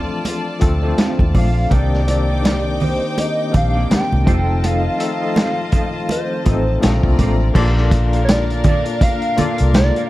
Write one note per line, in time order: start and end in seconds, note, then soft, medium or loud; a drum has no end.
0.00 1.73 E3 soft
0.00 0.60 F3 medium
0.00 0.60 A3 medium
0.00 0.61 C4 medium
0.00 0.61 D4 medium
0.00 1.68 F4 medium
0.00 0.62 A4 medium
0.00 1.68 D5 medium
0.00 1.67 A5 medium
0.10 muted clean electric guitar stroke soft
0.24 muted clean electric guitar stroke soft
0.24 closed hi-hat medium
0.24 muted conga medium
0.44 muted clean electric guitar stroke soft
0.60 0.92 D2 medium
0.60 1.29 F3 medium
0.60 1.29 A3 medium
0.60 1.30 C4 medium
0.60 1.30 D4 medium
0.60 1.30 A4 medium
0.60 kick medium
0.60 closed hi-hat medium
0.60 muted conga soft
0.82 0.95 C4 medium
0.82 0.95 F4 medium
0.82 0.95 A4 medium
0.82 0.95 D5 medium
0.96 1.14 C4 medium
0.96 1.15 F4 medium
0.96 1.15 A4 medium
0.96 1.15 F5 medium
0.96 snare medium
0.96 closed hi-hat medium
0.96 high conga medium
1.19 1.32 D#2 medium
1.19 muted clean electric guitar stroke soft
1.19 kick medium
1.19 high conga soft
1.33 1.65 A#1 medium
1.33 1.47 C4 medium
1.33 1.47 F4 medium
1.33 1.48 A4 medium
1.33 1.48 D5 medium
1.33 kick medium
1.33 open hi-hat medium
1.33 high conga medium
1.38 1.75 F5 medium
1.55 muted clean electric guitar stroke soft
1.70 2.98 C2 medium
1.70 1.95 D#3 medium
1.70 4.24 D#3 medium
1.70 1.88 A#3 medium
1.70 4.24 A#3 medium
1.70 1.95 A#3 medium
1.70 4.24 C4 medium
1.70 1.96 C4 medium
1.70 1.96 D4 medium
1.70 1.88 D#4 medium
1.70 4.23 D#4 medium
1.70 1.88 G4 medium
1.70 1.97 G4 medium
1.70 1.89 D5 medium
1.70 2.09 D5 medium
1.70 4.23 G5 medium
1.70 4.23 D6 medium
1.70 kick medium
1.70 closed hi-hat medium
1.70 muted conga medium
1.94 snare soft
2.06 3.00 D#3 medium
2.06 3.00 A#3 medium
2.06 3.01 C4 medium
2.06 3.01 D4 medium
2.06 3.01 G4 medium
2.06 muted clean electric guitar stroke soft
2.06 closed hi-hat medium
2.06 muted conga soft
2.10 2.85 D5 medium
2.27 2.39 A#3 soft
2.27 2.38 D#4 soft
2.27 2.38 G4 soft
2.27 2.38 D#5 soft
2.42 2.60 A#3 medium
2.42 2.61 D#4 medium
2.42 2.61 G4 medium
2.42 2.61 D5 medium
2.42 snare loud
2.42 closed hi-hat medium
2.42 high conga medium
2.64 muted clean electric guitar stroke soft
2.78 2.93 A#3 medium
2.78 2.93 D#4 medium
2.78 2.94 G4 medium
2.78 2.94 D#5 medium
2.78 open hi-hat soft
2.78 low conga medium
2.83 3.21 C5 medium
3.00 muted clean electric guitar stroke soft
3.17 3.55 D#5 loud
3.17 muted clean electric guitar stroke soft
3.17 closed hi-hat medium
3.17 muted conga medium
3.37 muted clean electric guitar stroke soft
3.51 3.84 A#1 medium
3.51 4.21 D#3 medium
3.51 4.21 A#3 medium
3.51 4.22 C4 medium
3.51 4.22 D4 medium
3.51 4.22 G4 medium
3.51 kick medium
3.51 closed hi-hat medium
3.51 muted conga soft
3.51 low conga medium
3.57 3.89 F5 loud
3.73 3.88 A#3 medium
3.73 3.87 D#4 medium
3.73 3.87 G4 medium
3.73 3.87 D5 medium
3.91 4.67 G5 loud
3.91 muted fingered electric bass stroke soft
3.91 snare loud
3.91 closed hi-hat loud
3.91 high conga medium
4.10 4.25 C2 medium
4.10 muted clean electric guitar stroke soft
4.10 high conga medium
4.25 4.87 F1 medium
4.25 6.80 D#3 medium
4.25 4.86 F3 medium
4.25 4.87 A3 medium
4.25 4.43 C4 medium
4.25 4.87 C4 medium
4.25 7.53 C4 medium
4.25 4.87 D#4 medium
4.25 4.44 F4 medium
4.25 6.78 F4 medium
4.25 6.80 F4 medium
4.25 4.35 G4 medium
4.25 4.44 A4 medium
4.25 6.78 D#5 medium
4.25 4.44 D#5 medium
4.25 6.78 A5 medium
4.25 kick loud
4.25 closed hi-hat medium
4.25 high conga medium
4.34 4.91 A4 medium
4.47 muted clean electric guitar stroke soft
4.62 4.80 C4 medium
4.62 4.80 F4 medium
4.62 4.81 A4 medium
4.62 4.81 D#5 medium
4.62 6.10 F5 loud
4.62 closed hi-hat medium
4.62 muted conga soft
4.98 5.92 F3 medium
4.98 5.92 A3 medium
4.98 5.93 C4 medium
4.98 5.93 D#4 medium
4.98 5.93 A4 medium
4.98 muted clean electric guitar stroke soft
4.98 closed hi-hat medium
5.21 5.32 C4 soft
5.21 5.31 F4 soft
5.21 5.31 A4 soft
5.21 5.31 D#5 soft
5.36 5.53 C4 medium
5.36 5.54 F4 medium
5.36 5.54 A4 medium
5.36 5.54 D#5 medium
5.36 snare loud
5.36 closed hi-hat medium
5.36 high conga medium
5.57 muted clean electric guitar stroke soft
5.72 5.86 C4 medium
5.72 5.86 F4 medium
5.72 5.87 A4 medium
5.72 5.87 D#5 medium
5.72 kick medium
5.72 closed hi-hat medium
5.93 muted clean electric guitar stroke soft
6.09 7.16 C5 medium
6.09 muted clean electric guitar stroke soft
6.09 closed hi-hat medium
6.09 muted conga medium
6.30 muted clean electric guitar stroke soft
6.44 6.76 A1 medium
6.44 6.80 F3 medium
6.44 6.82 A3 medium
6.44 6.62 C4 medium
6.44 6.81 C4 medium
6.44 6.82 D#4 medium
6.44 6.63 F4 medium
6.44 6.63 A4 medium
6.44 6.83 A4 medium
6.44 6.63 D#5 medium
6.44 kick medium
6.44 closed hi-hat medium
6.44 muted conga soft
6.66 muted clean electric guitar stroke soft
6.81 7.00 A#1 medium
6.81 7.55 C3 medium
6.81 7.42 F3 medium
6.81 7.44 A3 medium
6.81 7.43 A#3 medium
6.81 6.99 C4 medium
6.81 7.43 C4 medium
6.81 7.54 D4 medium
6.81 7.43 D4 medium
6.81 6.99 F4 medium
6.81 7.54 F4 medium
6.81 7.00 A4 medium
6.81 7.54 D5 medium
6.81 7.00 F5 medium
6.81 7.54 A#5 medium
6.81 snare loud
6.81 closed hi-hat loud
6.81 high conga medium
7.03 7.16 C2 medium
7.03 muted clean electric guitar stroke soft
7.03 kick medium
7.18 7.49 A1 medium
7.18 7.32 C4 medium
7.18 7.32 F4 medium
7.18 7.32 A4 medium
7.18 7.33 D5 medium
7.18 kick medium
7.18 closed hi-hat medium
7.18 high conga medium
7.40 muted clean electric guitar stroke soft
7.54 8.82 A#1 loud
7.54 10.10 A#2 medium
7.54 8.48 A#3 loud
7.54 7.72 A#3 medium
7.54 10.10 A#3 medium
7.54 8.48 D4 medium
7.54 10.10 D4 medium
7.54 7.72 F4 medium
7.54 8.48 F4 medium
7.54 7.72 A4 medium
7.54 8.48 A4 medium
7.54 10.10 A#4 medium
7.54 7.73 D5 medium
7.54 8.49 D5 medium
7.54 10.10 F5 medium
7.54 kick medium
7.54 crash medium
7.54 muted conga soft
7.77 snare soft
7.91 muted clean electric guitar stroke soft
7.91 kick loud
7.91 closed hi-hat medium
7.91 muted conga soft
8.12 8.23 A#3 soft
8.12 8.23 F4 soft
8.12 8.23 A4 medium
8.12 8.22 F5 medium
8.12 closed hi-hat soft
8.24 8.32 C#5 medium
8.29 9.04 D5 loud
8.29 snare loud
8.29 closed hi-hat loud
8.29 high conga medium
8.49 muted clean electric guitar stroke soft
8.49 closed hi-hat soft
8.64 8.82 A#3 medium
8.64 8.82 F4 medium
8.64 8.82 A4 medium
8.64 8.82 D5 medium
8.64 kick medium
8.64 closed hi-hat medium
8.64 low conga medium
8.86 muted clean electric guitar stroke soft
8.86 closed hi-hat medium
9.01 9.75 F5 loud
9.01 muted clean electric guitar stroke soft
9.01 kick medium
9.01 closed hi-hat medium
9.01 muted conga medium
9.22 muted clean electric guitar stroke soft
9.22 closed hi-hat soft
9.36 10.06 A#3 medium
9.36 9.55 A#3 medium
9.36 10.06 D4 medium
9.36 10.06 F4 medium
9.36 9.55 F4 medium
9.36 10.06 A4 medium
9.36 9.55 A4 medium
9.36 10.07 D5 medium
9.36 9.56 D5 medium
9.36 muted fingered electric bass stroke soft
9.36 closed hi-hat medium
9.36 muted conga soft
9.36 low conga medium
9.58 9.90 C2 medium
9.58 muted clean electric guitar stroke soft
9.58 closed hi-hat medium
9.74 10.10 D5 medium
9.74 muted clean electric guitar stroke soft
9.74 snare loud
9.74 closed hi-hat loud
9.74 high conga medium
9.96 10.09 A#3 medium
9.96 10.09 F4 medium
9.96 10.09 A4 medium
9.96 10.08 F5 medium
9.96 closed hi-hat soft